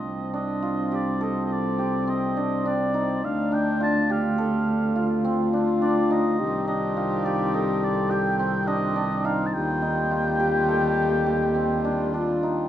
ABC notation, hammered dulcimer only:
X:1
M:11/8
L:1/8
Q:1/4=104
K:Cdor
V:1 name="Hammered dulcimer"
z D F G A2 G C D D E | z D F G A2 F C D D E | z D F G A2 G C D D E | z E F G A2 G C D D E |]